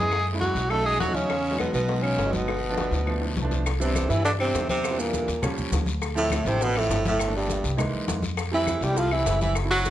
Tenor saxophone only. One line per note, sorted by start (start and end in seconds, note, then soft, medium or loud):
0.00 0.26 G#4 loud
0.40 0.72 F#4 loud
0.70 0.87 A4 loud
0.86 1.00 G#4 loud
1.00 1.17 F#4 medium
1.16 1.59 C#4 medium
1.59 1.73 B3 medium
1.74 2.04 B3 medium
2.03 2.35 C#4 medium
2.33 3.51 B3 medium
3.81 4.11 C4 medium
4.10 4.25 E4 loud
4.25 4.32 D4 loud
4.40 4.67 C4 loud
4.70 5.01 C4 medium
4.99 5.43 A#3 medium
6.18 6.49 A3 medium
6.48 6.66 C4 loud
6.64 6.80 B3 loud
6.78 7.06 A3 loud
7.08 7.34 A3 loud
7.36 7.76 G3 medium
8.54 8.85 E4 medium
8.83 8.99 G4 medium
8.98 9.13 F4 loud
9.12 9.41 E4 loud
9.42 9.55 E4 medium
9.71 9.90 F#4 loud